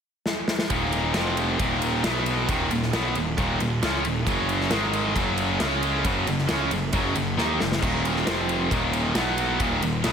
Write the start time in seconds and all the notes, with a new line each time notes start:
0.26 snare
0.48 snare
0.59 snare
0.70 D#1 D#2 A#2 D#3, kick, ride
0.93 ride
1.14 F1 F2 C3 F3, snare, ride
1.37 ride
1.59 D#1 D#2 A#2 D#3, kick, ride
1.82 ride
2.04 B1 B2 F#3 B3, snare, ride
2.26 ride
2.49 D#1 D#2 A#2 D#3, kick, ride
2.71 D#1 D#2 A#2, ride
2.82 snare
2.93 B1 B2 F#3 B3, snare, ride
3.15 D#1 D#2 A#2, ride
3.38 D#1 D#2 A#2 D#3, kick, ride
3.60 D#1 D#2 A#2, ride
3.83 C#2 C#3 G#3 C#4, snare, ride
4.05 D#1 D#2 A#2, ride
4.27 F#1 F#2 C#3 F#3, kick, ride
4.49 ride
4.60 snare
4.71 G#1 G#2 D#3 G#3, snare, ride
4.93 ride
5.15 F#1 F#2 C#3 F#3, kick, ride
5.38 ride
5.60 C#2 C#3 G#3 C#4, snare, ride
5.83 ride
6.05 F#1 F#2 C#3 F#3, kick, ride
6.27 F#1 F#2 C#3, ride
6.38 snare
6.49 C#2 C#3 G#3 C#4, snare, ride
6.71 F#1 F#2 C#3, ride
6.93 F#1 F#2 C#3 F#3, kick, ride
7.15 F#1 F#2 C#3, ride
7.37 D#2 D#3 A#3 D#4, snare
7.59 F#1 F#2 C#3, snare
7.72 snare
7.82 D#1 D#2 A#2 D#3, kick, splash, crash
8.05 ride
8.16 snare
8.26 F1 F2 C3 F3, snare, ride
8.49 ride
8.71 D#1 D#2 A#2 D#3, kick, ride
8.93 ride
9.15 B1 B2 F#3 B3, snare, ride
9.38 ride
9.60 D#1 D#2 A#2 D#3, kick, ride
9.82 D#1 D#2 A#2, ride
10.04 B1 B2 F#3 B3, snare, ride